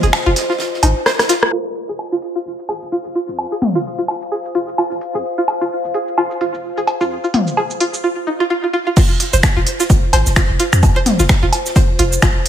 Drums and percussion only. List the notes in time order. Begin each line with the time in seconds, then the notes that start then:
0.03 snare, open hi-hat
0.13 finger snap, snare, closed hi-hat, low woodblock
0.36 snare, closed hi-hat, open hi-hat
0.50 snare
0.59 snare, closed hi-hat
0.74 snare
0.83 closed hi-hat, open hi-hat, low woodblock
1.06 cross-stick, snare, closed hi-hat
1.19 cross-stick, snare, closed hi-hat, open hi-hat
1.29 snare, closed hi-hat, open hi-hat
1.43 cross-stick
1.66 shaker
1.76 open hi-hat
1.89 shaker
1.99 low woodblock
2.12 shaker
2.22 open hi-hat
2.36 shaker
2.59 shaker
2.69 open hi-hat, low woodblock
2.82 shaker
3.05 open hi-hat, shaker
3.15 open hi-hat
3.29 shaker
3.39 low woodblock
3.52 shaker
3.62 mid tom, open hi-hat
3.75 shaker
3.98 shaker
4.08 open hi-hat, low woodblock
4.22 shaker
4.45 shaker
4.55 open hi-hat
4.68 shaker
4.78 low woodblock
4.91 open hi-hat, shaker
5.01 open hi-hat
5.15 shaker
5.38 shaker
5.48 open hi-hat, low woodblock
5.61 shaker
5.84 shaker
5.94 open hi-hat
6.08 shaker
6.18 low woodblock
6.31 shaker
6.41 open hi-hat
6.54 shaker
6.78 open hi-hat, shaker
6.87 open hi-hat, low woodblock
7.01 shaker
7.24 shaker
7.34 mid tom, open hi-hat
7.47 shaker
7.57 low woodblock
7.70 shaker
7.80 open hi-hat
7.94 shaker
8.96 kick, closed hi-hat, crash, shaker
9.20 closed hi-hat, open hi-hat
9.33 shaker
9.43 finger snap, kick, snare, closed hi-hat, low woodblock, shaker
9.57 closed hi-hat
9.66 closed hi-hat, open hi-hat
9.80 snare, shaker
9.90 kick, closed hi-hat, shaker
10.13 snare, closed hi-hat, open hi-hat, low woodblock
10.26 snare, shaker
10.36 finger snap, kick, snare, closed hi-hat, shaker
10.59 closed hi-hat, open hi-hat
10.73 finger snap, shaker
10.83 kick, closed hi-hat, low woodblock, shaker
11.06 snare, closed hi-hat, mid tom, open hi-hat
11.19 snare, shaker
11.29 finger snap, kick, snare, closed hi-hat, shaker
11.53 closed hi-hat, open hi-hat, low woodblock
11.66 snare, shaker
11.76 kick, closed hi-hat, shaker
11.99 closed hi-hat, open hi-hat
12.12 shaker
12.22 finger snap, kick, snare, closed hi-hat, low woodblock, shaker
12.45 closed hi-hat